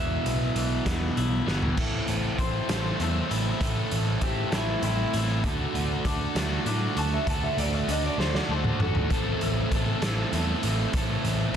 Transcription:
Already playing: E1 E2 B2 E3 B3 E4 E5
0.00 E3
0.26 B1 B2, closed hi-hat
0.56 B1 E3, closed hi-hat
0.86 E1 B3, kick, snare, closed hi-hat
1.17 B1 E4, closed hi-hat
1.46 G1 E2 B2 E3 B3, snare
1.63 floor tom
1.76 A1 A2 E3 A3 C4 E4 A4, kick, crash
2.08 A1, closed hi-hat
2.38 A1 A3 C4 E4 A4 C5, kick, closed hi-hat
2.69 A1 E3 A3 C4 E4 A4, snare, closed hi-hat
2.73 A2
3.00 E2 A3 C4 E4 A4, closed hi-hat
3.31 A1 E4, closed hi-hat
3.60 A1 A2 E3 A3 C4 E4 A4, kick, closed hi-hat
3.91 A1, closed hi-hat
4.21 A1 A3 C4 E4 G4 A4, kick, closed hi-hat
4.51 A1 A2 E3 A3 C4 E4 A4, snare, closed hi-hat
4.83 A1 A3 C4 E4 A4, closed hi-hat
5.13 A1 E4, closed hi-hat
5.44 D2 D3 A3 D4 F#4 A4, kick, closed hi-hat
5.74 D2, closed hi-hat
6.05 D2 A3 D4 F#4 A4, kick, closed hi-hat
6.35 D2 A3 D4 F#4 A4, snare, closed hi-hat
6.39 D3
6.66 A2 A3 D4 F#4 A4, closed hi-hat
6.96 D2 F#4 A5, closed hi-hat
7.14 E5
7.27 D2 D3 A3 D4 F#4 A4 A5, kick, closed hi-hat
7.44 E5
7.57 D2 D5, closed hi-hat
7.74 E5
7.87 D2 A3 D4 F#4 A4 D#5, closed hi-hat
8.06 D5
8.18 D2 D3 A3 D4 F#4 A4 C5, snare
8.35 D5, snare
8.49 D2 A3 D4 F#4 A4 C5
8.64 mid tom
8.79 G#1 F#4 A4, mid tom
8.95 floor tom
9.10 A1 A2 E3 A3 C4 E4 A4, kick, closed hi-hat
9.41 A1, closed hi-hat
9.72 A1 A3 C4 E4 A4, kick, closed hi-hat
10.02 A1 A2 E3 A3 C4 E4 A4, snare, closed hi-hat
10.32 E2 A3 C4 E4 A4, closed hi-hat
10.63 A1, closed hi-hat
10.93 A1 A2 E3 A3 C4 E4 A4, kick, closed hi-hat
11.24 A1, closed hi-hat

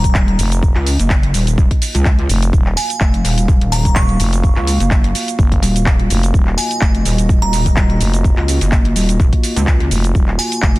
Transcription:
Already playing: D#1 A#3 F4 F#4 D#5 A#5, impact
0.04 kick, closed hi-hat, shaker
0.15 D#1, kick, clap, shaker
0.28 closed hi-hat
0.39 F1, open hi-hat, shaker
0.52 closed hi-hat, shaker
0.63 kick, shaker
0.75 C#2, clap
0.86 open hi-hat, shaker
0.99 F#1, closed hi-hat, shaker
1.10 kick, clap, shaker
1.23 closed hi-hat
1.34 D#1, open hi-hat, shaker
1.47 closed hi-hat, shaker
1.58 kick, shaker
1.71 kick, closed hi-hat
1.82 open hi-hat, shaker
1.95 C#2, closed hi-hat, shaker
2.05 kick, clap, shaker
2.19 closed hi-hat
2.29 F1, open hi-hat, shaker
2.42 closed hi-hat, shaker
2.53 D#1 F5, kick, shaker
2.66 clap
2.77 G#5, open hi-hat, shaker
2.90 closed hi-hat, shaker
3.01 F1, kick, clap, shaker
3.14 closed hi-hat
3.24 D#1, open hi-hat, shaker
3.38 closed hi-hat, shaker
3.48 kick, shaker
3.61 D#1, closed hi-hat
3.72 A#5, open hi-hat, shaker
3.85 kick, closed hi-hat, shaker
3.96 D#1 C#6, kick, clap, shaker
4.09 closed hi-hat
4.20 F1, open hi-hat, shaker
4.33 closed hi-hat, shaker
4.44 kick, shaker
4.56 C#2, clap
4.67 open hi-hat, shaker
4.80 F#1, closed hi-hat, shaker
4.91 kick, clap, shaker
5.04 closed hi-hat
5.15 open hi-hat, shaker
5.28 closed hi-hat, shaker
5.39 F#1, kick, shaker
5.52 kick, closed hi-hat
5.62 D#1, open hi-hat, shaker
5.76 closed hi-hat, shaker
5.86 kick, clap, shaker
6.00 closed hi-hat
6.10 F1, open hi-hat, shaker
6.23 closed hi-hat, shaker
6.34 D#1 D#5, kick, shaker
6.47 clap
6.58 G#5, open hi-hat, shaker
6.71 closed hi-hat, shaker
6.81 F1, kick, clap, shaker
6.95 closed hi-hat
7.05 D#1, open hi-hat, shaker
7.18 closed hi-hat, shaker
7.29 kick, shaker
7.42 D#1 A#5, closed hi-hat
7.53 open hi-hat, shaker
7.66 kick, closed hi-hat, shaker
7.77 D#1, kick, clap, shaker
7.90 closed hi-hat
8.01 F1, open hi-hat, shaker
8.14 closed hi-hat, shaker
8.24 kick, shaker
8.37 C#2, clap
8.48 open hi-hat, shaker
8.61 F#1, closed hi-hat, shaker
8.72 kick, clap, shaker
8.85 closed hi-hat
8.96 D#1, open hi-hat, shaker
9.09 closed hi-hat, shaker
9.20 kick, shaker
9.33 kick, closed hi-hat
9.43 open hi-hat, shaker
9.56 C#2, closed hi-hat, shaker
9.67 kick, clap, shaker
9.80 closed hi-hat
9.91 F1, open hi-hat, shaker
10.04 closed hi-hat, shaker
10.15 D#1 G#5, kick, shaker
10.28 clap
10.39 G#5, open hi-hat, shaker
10.52 closed hi-hat, shaker
10.62 F1, kick, clap, shaker
10.76 closed hi-hat

